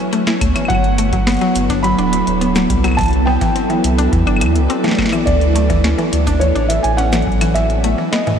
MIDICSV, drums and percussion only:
0, 0, Header, 1, 2, 480
1, 0, Start_track
1, 0, Tempo, 571429
1, 586, Time_signature, 4, 2, 24, 8
1, 7048, End_track
2, 0, Start_track
2, 0, Title_t, "Drums"
2, 107, Note_on_c, 9, 42, 52
2, 191, Note_off_c, 9, 42, 0
2, 227, Note_on_c, 9, 38, 127
2, 227, Note_on_c, 9, 42, 26
2, 311, Note_off_c, 9, 38, 0
2, 311, Note_off_c, 9, 42, 0
2, 347, Note_on_c, 9, 36, 113
2, 348, Note_on_c, 9, 42, 97
2, 348, Note_on_c, 9, 75, 76
2, 431, Note_off_c, 9, 36, 0
2, 432, Note_off_c, 9, 42, 0
2, 432, Note_off_c, 9, 75, 0
2, 467, Note_on_c, 9, 42, 52
2, 467, Note_on_c, 9, 75, 70
2, 548, Note_off_c, 9, 75, 0
2, 548, Note_on_c, 9, 75, 58
2, 551, Note_off_c, 9, 42, 0
2, 587, Note_on_c, 9, 36, 120
2, 587, Note_on_c, 9, 42, 50
2, 627, Note_off_c, 9, 75, 0
2, 627, Note_on_c, 9, 75, 50
2, 671, Note_off_c, 9, 36, 0
2, 671, Note_off_c, 9, 42, 0
2, 706, Note_on_c, 9, 42, 24
2, 711, Note_off_c, 9, 75, 0
2, 790, Note_off_c, 9, 42, 0
2, 826, Note_on_c, 9, 42, 95
2, 910, Note_off_c, 9, 42, 0
2, 946, Note_on_c, 9, 42, 49
2, 947, Note_on_c, 9, 36, 107
2, 1030, Note_off_c, 9, 42, 0
2, 1031, Note_off_c, 9, 36, 0
2, 1067, Note_on_c, 9, 38, 116
2, 1067, Note_on_c, 9, 42, 46
2, 1087, Note_off_c, 9, 42, 0
2, 1087, Note_on_c, 9, 42, 40
2, 1107, Note_off_c, 9, 42, 0
2, 1107, Note_on_c, 9, 42, 31
2, 1127, Note_off_c, 9, 42, 0
2, 1127, Note_on_c, 9, 42, 26
2, 1148, Note_off_c, 9, 42, 0
2, 1148, Note_on_c, 9, 42, 23
2, 1151, Note_off_c, 9, 38, 0
2, 1168, Note_off_c, 9, 42, 0
2, 1168, Note_on_c, 9, 42, 18
2, 1187, Note_off_c, 9, 42, 0
2, 1187, Note_on_c, 9, 42, 26
2, 1271, Note_off_c, 9, 42, 0
2, 1307, Note_on_c, 9, 42, 87
2, 1307, Note_on_c, 9, 69, 66
2, 1391, Note_off_c, 9, 42, 0
2, 1391, Note_off_c, 9, 69, 0
2, 1427, Note_on_c, 9, 36, 82
2, 1427, Note_on_c, 9, 42, 53
2, 1511, Note_off_c, 9, 36, 0
2, 1511, Note_off_c, 9, 42, 0
2, 1547, Note_on_c, 9, 42, 51
2, 1631, Note_off_c, 9, 42, 0
2, 1668, Note_on_c, 9, 42, 25
2, 1752, Note_off_c, 9, 42, 0
2, 1788, Note_on_c, 9, 42, 91
2, 1872, Note_off_c, 9, 42, 0
2, 1909, Note_on_c, 9, 42, 51
2, 1993, Note_off_c, 9, 42, 0
2, 2028, Note_on_c, 9, 42, 50
2, 2112, Note_off_c, 9, 42, 0
2, 2149, Note_on_c, 9, 38, 120
2, 2149, Note_on_c, 9, 42, 26
2, 2149, Note_on_c, 9, 69, 79
2, 2233, Note_off_c, 9, 38, 0
2, 2233, Note_off_c, 9, 42, 0
2, 2233, Note_off_c, 9, 69, 0
2, 2267, Note_on_c, 9, 36, 102
2, 2268, Note_on_c, 9, 42, 92
2, 2351, Note_off_c, 9, 36, 0
2, 2352, Note_off_c, 9, 42, 0
2, 2388, Note_on_c, 9, 42, 53
2, 2388, Note_on_c, 9, 75, 73
2, 2418, Note_off_c, 9, 75, 0
2, 2418, Note_on_c, 9, 75, 56
2, 2448, Note_off_c, 9, 75, 0
2, 2448, Note_on_c, 9, 75, 50
2, 2472, Note_off_c, 9, 42, 0
2, 2478, Note_off_c, 9, 75, 0
2, 2478, Note_on_c, 9, 75, 42
2, 2507, Note_on_c, 9, 36, 111
2, 2508, Note_off_c, 9, 75, 0
2, 2508, Note_on_c, 9, 42, 50
2, 2508, Note_on_c, 9, 75, 33
2, 2528, Note_off_c, 9, 42, 0
2, 2528, Note_on_c, 9, 42, 40
2, 2537, Note_off_c, 9, 75, 0
2, 2537, Note_on_c, 9, 75, 27
2, 2568, Note_off_c, 9, 42, 0
2, 2568, Note_off_c, 9, 75, 0
2, 2568, Note_on_c, 9, 42, 26
2, 2568, Note_on_c, 9, 75, 23
2, 2588, Note_off_c, 9, 42, 0
2, 2588, Note_on_c, 9, 42, 22
2, 2591, Note_off_c, 9, 36, 0
2, 2598, Note_off_c, 9, 75, 0
2, 2598, Note_on_c, 9, 75, 19
2, 2608, Note_off_c, 9, 42, 0
2, 2608, Note_on_c, 9, 42, 18
2, 2629, Note_off_c, 9, 42, 0
2, 2629, Note_on_c, 9, 42, 25
2, 2682, Note_off_c, 9, 75, 0
2, 2713, Note_off_c, 9, 42, 0
2, 2867, Note_on_c, 9, 36, 103
2, 2867, Note_on_c, 9, 42, 49
2, 2951, Note_off_c, 9, 36, 0
2, 2951, Note_off_c, 9, 42, 0
2, 2988, Note_on_c, 9, 42, 51
2, 3072, Note_off_c, 9, 42, 0
2, 3107, Note_on_c, 9, 42, 27
2, 3191, Note_off_c, 9, 42, 0
2, 3228, Note_on_c, 9, 42, 91
2, 3312, Note_off_c, 9, 42, 0
2, 3348, Note_on_c, 9, 42, 52
2, 3432, Note_off_c, 9, 42, 0
2, 3466, Note_on_c, 9, 36, 104
2, 3467, Note_on_c, 9, 42, 50
2, 3550, Note_off_c, 9, 36, 0
2, 3551, Note_off_c, 9, 42, 0
2, 3588, Note_on_c, 9, 42, 25
2, 3588, Note_on_c, 9, 75, 71
2, 3667, Note_off_c, 9, 75, 0
2, 3667, Note_on_c, 9, 75, 62
2, 3672, Note_off_c, 9, 42, 0
2, 3707, Note_off_c, 9, 75, 0
2, 3707, Note_on_c, 9, 42, 89
2, 3707, Note_on_c, 9, 75, 82
2, 3747, Note_off_c, 9, 75, 0
2, 3747, Note_on_c, 9, 75, 50
2, 3791, Note_off_c, 9, 42, 0
2, 3827, Note_on_c, 9, 42, 49
2, 3831, Note_off_c, 9, 75, 0
2, 3911, Note_off_c, 9, 42, 0
2, 3947, Note_on_c, 9, 42, 50
2, 4031, Note_off_c, 9, 42, 0
2, 4067, Note_on_c, 9, 38, 52
2, 4067, Note_on_c, 9, 42, 24
2, 4097, Note_off_c, 9, 38, 0
2, 4097, Note_on_c, 9, 38, 59
2, 4127, Note_off_c, 9, 38, 0
2, 4127, Note_on_c, 9, 38, 71
2, 4151, Note_off_c, 9, 42, 0
2, 4158, Note_off_c, 9, 38, 0
2, 4158, Note_on_c, 9, 38, 77
2, 4186, Note_on_c, 9, 36, 98
2, 4187, Note_off_c, 9, 38, 0
2, 4187, Note_on_c, 9, 38, 83
2, 4187, Note_on_c, 9, 75, 82
2, 4218, Note_off_c, 9, 38, 0
2, 4218, Note_on_c, 9, 38, 90
2, 4247, Note_off_c, 9, 38, 0
2, 4247, Note_on_c, 9, 38, 103
2, 4270, Note_off_c, 9, 36, 0
2, 4271, Note_off_c, 9, 75, 0
2, 4277, Note_off_c, 9, 38, 0
2, 4277, Note_on_c, 9, 38, 104
2, 4307, Note_on_c, 9, 69, 64
2, 4307, Note_on_c, 9, 75, 80
2, 4361, Note_off_c, 9, 38, 0
2, 4391, Note_off_c, 9, 69, 0
2, 4391, Note_off_c, 9, 75, 0
2, 4426, Note_on_c, 9, 36, 112
2, 4427, Note_on_c, 9, 42, 53
2, 4510, Note_off_c, 9, 36, 0
2, 4511, Note_off_c, 9, 42, 0
2, 4548, Note_on_c, 9, 42, 26
2, 4632, Note_off_c, 9, 42, 0
2, 4667, Note_on_c, 9, 42, 94
2, 4751, Note_off_c, 9, 42, 0
2, 4786, Note_on_c, 9, 36, 106
2, 4788, Note_on_c, 9, 42, 50
2, 4870, Note_off_c, 9, 36, 0
2, 4872, Note_off_c, 9, 42, 0
2, 4908, Note_on_c, 9, 38, 115
2, 4908, Note_on_c, 9, 42, 53
2, 4992, Note_off_c, 9, 38, 0
2, 4992, Note_off_c, 9, 42, 0
2, 5028, Note_on_c, 9, 42, 28
2, 5112, Note_off_c, 9, 42, 0
2, 5148, Note_on_c, 9, 42, 94
2, 5232, Note_off_c, 9, 42, 0
2, 5266, Note_on_c, 9, 36, 84
2, 5268, Note_on_c, 9, 42, 54
2, 5268, Note_on_c, 9, 69, 65
2, 5350, Note_off_c, 9, 36, 0
2, 5352, Note_off_c, 9, 42, 0
2, 5352, Note_off_c, 9, 69, 0
2, 5387, Note_on_c, 9, 42, 52
2, 5471, Note_off_c, 9, 42, 0
2, 5508, Note_on_c, 9, 42, 27
2, 5592, Note_off_c, 9, 42, 0
2, 5627, Note_on_c, 9, 42, 94
2, 5711, Note_off_c, 9, 42, 0
2, 5747, Note_on_c, 9, 42, 50
2, 5831, Note_off_c, 9, 42, 0
2, 5867, Note_on_c, 9, 42, 52
2, 5951, Note_off_c, 9, 42, 0
2, 5987, Note_on_c, 9, 38, 119
2, 5987, Note_on_c, 9, 42, 12
2, 5987, Note_on_c, 9, 69, 81
2, 6067, Note_off_c, 9, 42, 0
2, 6067, Note_on_c, 9, 42, 16
2, 6071, Note_off_c, 9, 38, 0
2, 6071, Note_off_c, 9, 69, 0
2, 6106, Note_on_c, 9, 36, 101
2, 6147, Note_off_c, 9, 42, 0
2, 6147, Note_on_c, 9, 42, 22
2, 6190, Note_off_c, 9, 36, 0
2, 6226, Note_off_c, 9, 42, 0
2, 6226, Note_on_c, 9, 42, 91
2, 6226, Note_on_c, 9, 75, 83
2, 6310, Note_off_c, 9, 42, 0
2, 6310, Note_off_c, 9, 75, 0
2, 6346, Note_on_c, 9, 42, 56
2, 6430, Note_off_c, 9, 42, 0
2, 6467, Note_on_c, 9, 42, 26
2, 6551, Note_off_c, 9, 42, 0
2, 6586, Note_on_c, 9, 42, 97
2, 6670, Note_off_c, 9, 42, 0
2, 6826, Note_on_c, 9, 38, 116
2, 6826, Note_on_c, 9, 42, 55
2, 6910, Note_off_c, 9, 38, 0
2, 6910, Note_off_c, 9, 42, 0
2, 6947, Note_on_c, 9, 42, 30
2, 6947, Note_on_c, 9, 45, 89
2, 7007, Note_off_c, 9, 45, 0
2, 7007, Note_on_c, 9, 45, 75
2, 7031, Note_off_c, 9, 42, 0
2, 7048, Note_off_c, 9, 45, 0
2, 7048, End_track
0, 0, End_of_file